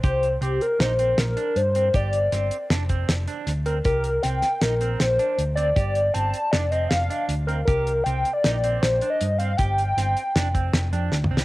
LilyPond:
<<
  \new Staff \with { instrumentName = "Analog synth lead" } { \time 5/4 \key g \minor \tempo 4 = 157 c''4 g'8 bes'8 c''4 bes'4 c''4 | d''2 r2 r8 bes'8 | bes'4 g''4 bes'4 c''4 r8 d''8 | d''4 a''4 d''8 ees''8 f''4 r8 bes'8 |
bes'4 g''8. d''4~ d''16 c''8. ees''8. f''8 | g''1 r4 | }
  \new Staff \with { instrumentName = "Clean electric guitar" } { \time 5/4 \key g \minor g'4 c'4 ees'8 c'4 d'4 c'8 | g'4 c'4 d'8 c'4 d'4 c'8 | g'4 c'4 ees'8 c'4 d'4 c'8 | g'4 c'4 d'8 c'4 d'4 c'8 |
g'4 c'4 ees'8 c'4 d'4 c'8 | g'4 c'4 d'8 c'4 d'4 c'8 | }
  \new Staff \with { instrumentName = "Picked electric bass" } { \clef bass \time 5/4 \key g \minor c,4 c,8 r8 bes,,4 bes,,8 r8 g,4 | g,,4 g,,8 r8 f,,4 f,,8 r8 d,4 | c,4 c,8 r8 bes,,4 bes,,8 r8 d,4 | g,,4 g,,8 r8 f,,4 f,,8 r8 d,4 |
c,4 c,8 r8 bes,,4 bes,,8 r8 g,4 | g,,4 g,,8 r8 f,,4 f,,8 f,8 d,8 c,8 | }
  \new DrumStaff \with { instrumentName = "Drums" } \drummode { \time 5/4 <hh bd>8 hh8 hh8 hh8 <hh sn>8 hh8 <hh sn>8 hh8 hh8 hh8 | <hh bd>8 hh8 <hh sn>8 hh8 <hh sn>8 <hh bd>8 <hh sn>8 hh8 <hh sn>8 hh8 | <hh bd>8 hh8 <hh sn>8 <hh sn>8 <hh sn>8 hh8 <hh sn>8 hh8 hh8 hh8 | <hh bd>8 hh8 hh8 hh8 <hh sn>8 hh8 <hh sn>8 hh8 hh8 hh8 |
<hh bd>8 hh8 hh8 hh8 <hh sn>8 hh8 <hh sn>8 hh8 hh8 hh8 | <hh bd>8 hh8 <hh sn>8 hh8 <hh sn>8 <hh bd>8 <hh sn>8 hh8 \tuplet 3/2 { sn8 toml8 sn8 } | }
>>